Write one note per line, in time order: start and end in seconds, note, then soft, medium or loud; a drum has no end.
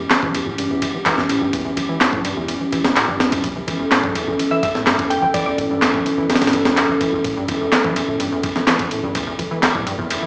0.00 0.24 E1 loud
0.00 10.26 E3 medium
0.00 10.26 B3 medium
0.00 10.26 C#4 medium
0.00 3.42 G4 medium
0.10 0.15 E3 medium
0.10 snare loud
0.10 clap loud
0.10 ride medium
0.23 0.40 B1 medium
0.23 0.32 E3 loud
0.23 kick loud
0.34 0.41 E2 loud
0.34 ride medium
0.46 0.77 E1 medium
0.46 0.56 A2 medium
0.58 0.68 G2 loud
0.58 ride medium
0.71 0.80 E2 loud
0.82 1.13 E1 medium
0.82 0.89 E2 loud
0.82 ride medium
0.94 0.98 E3 medium
1.06 1.16 E3 loud
1.06 kick medium
1.06 clap loud
1.06 ride medium
1.18 1.35 E1 medium
1.18 1.24 E2 loud
1.18 snare soft
1.29 1.39 A2 medium
1.29 ride medium
1.41 1.50 E1 loud
1.41 1.51 G2 loud
1.53 1.63 E2 loud
1.53 kick loud
1.53 ride medium
1.65 1.72 E2 loud
1.77 2.15 E1 loud
1.77 1.81 E3 medium
1.77 ride medium
1.89 1.99 E3 loud
2.01 2.07 E2 loud
2.01 snare loud
2.01 clap loud
2.01 ride medium
2.13 2.30 B1 medium
2.13 2.22 A2 medium
2.13 kick loud
2.25 2.35 G2 loud
2.25 ride medium
2.37 2.67 E1 medium
2.37 2.46 E2 loud
2.48 2.55 E2 loud
2.48 ride medium
2.61 2.64 E3 medium
2.72 3.03 E1 loud
2.72 2.82 E3 loud
2.72 ride medium
2.84 2.91 E2 loud
2.84 snare loud
2.96 3.06 A2 medium
2.96 clap loud
2.96 ride medium
3.08 3.26 E1 medium
3.08 3.18 G2 loud
3.20 3.30 E2 loud
3.20 snare loud
3.32 3.63 B1 medium
3.32 3.38 E2 loud
3.32 ride medium
3.43 3.50 E2 loud
3.43 10.26 A4 medium
3.43 kick loud
3.43 ride medium
3.56 3.60 E3 medium
3.67 4.05 E1 medium
3.67 3.78 E3 loud
3.67 ride medium
3.80 3.86 E2 loud
3.91 4.01 A2 medium
3.91 snare loud
3.91 clap loud
3.91 ride medium
4.03 4.21 B1 medium
4.03 4.13 G2 loud
4.03 kick loud
4.15 4.25 E2 loud
4.15 ride medium
4.27 4.58 E1 medium
4.27 4.34 E2 loud
4.39 4.43 E3 medium
4.39 ride medium
4.51 4.61 E3 loud
4.51 4.59 E5 medium
4.63 4.94 E1 medium
4.63 4.69 E2 loud
4.63 4.71 E5 medium
4.63 kick medium
4.63 ride medium
4.75 4.85 A2 medium
4.75 snare soft
4.86 4.97 G2 loud
4.86 snare loud
4.86 clap loud
4.86 ride medium
4.99 5.16 E1 medium
4.99 5.09 E2 loud
4.99 ride soft
5.10 5.17 E2 loud
5.10 5.18 G5 medium
5.10 ride medium
5.22 5.31 E1 loud
5.22 5.26 E3 medium
5.22 5.30 G5 medium
5.34 5.44 E3 loud
5.34 5.42 D5 medium
5.34 kick loud
5.34 ride medium
5.46 5.53 E2 loud
5.46 5.54 D5 medium
5.58 5.96 E1 loud
5.58 5.68 A2 medium
5.58 ride medium
5.71 5.80 G2 loud
5.82 5.92 E2 loud
5.82 snare loud
5.82 clap loud
5.82 ride medium
5.94 6.11 B1 medium
5.94 6.01 E2 loud
5.94 kick loud
6.06 6.10 E3 medium
6.06 ride medium
6.18 6.48 E1 medium
6.18 6.27 E3 loud
6.29 6.36 E2 loud
6.29 snare medium
6.29 ride medium
6.35 snare medium
6.35 ride medium
6.42 6.51 A2 medium
6.42 snare medium
6.42 ride medium
6.47 snare medium
6.47 ride medium
6.53 6.84 E1 medium
6.53 6.63 G2 loud
6.53 ride medium
6.65 6.75 E2 loud
6.65 snare loud
6.77 6.84 E2 loud
6.77 clap loud
6.77 ride medium
6.89 7.07 E1 medium
6.89 6.93 E3 medium
7.01 7.11 E3 loud
7.01 kick loud
7.01 ride medium
7.13 7.21 E1 loud
7.13 7.20 E2 loud
7.24 7.35 A2 medium
7.24 kick loud
7.24 ride medium
7.37 7.47 G2 loud
7.48 7.86 E1 loud
7.48 7.59 E2 loud
7.48 ride medium
7.61 7.67 E2 loud
7.72 7.76 E3 medium
7.72 snare loud
7.72 clap loud
7.72 ride medium
7.84 8.02 B1 medium
7.84 7.94 E3 loud
7.84 kick loud
7.96 8.03 E2 loud
7.96 ride medium
8.08 8.39 E1 medium
8.08 8.18 A2 medium
8.20 8.30 G2 loud
8.20 ride medium
8.32 8.42 E2 loud
8.43 8.75 E1 medium
8.43 8.51 E2 loud
8.43 kick medium
8.43 ride medium
8.56 8.60 E3 medium
8.56 snare soft
8.67 8.78 E3 loud
8.67 snare loud
8.67 clap loud
8.67 ride medium
8.79 8.97 E1 medium
8.79 8.86 E2 loud
8.79 ride soft
8.91 9.02 A2 medium
8.91 ride medium
9.03 9.12 E1 loud
9.03 9.13 G2 loud
9.15 9.25 E2 loud
9.15 kick loud
9.15 ride medium
9.27 9.34 E2 loud
9.39 9.76 E1 loud
9.39 9.43 E3 medium
9.39 ride medium
9.51 9.61 E3 loud
9.63 9.69 E2 loud
9.63 snare loud
9.63 clap loud
9.63 ride medium
9.75 9.92 B1 medium
9.75 9.84 A2 medium
9.75 kick loud
9.86 9.96 G2 loud
9.86 ride medium
9.99 10.26 E1 medium
9.99 10.08 E2 loud
10.10 10.17 E2 loud
10.10 ride medium
10.10 swell medium
10.22 10.26 E3 medium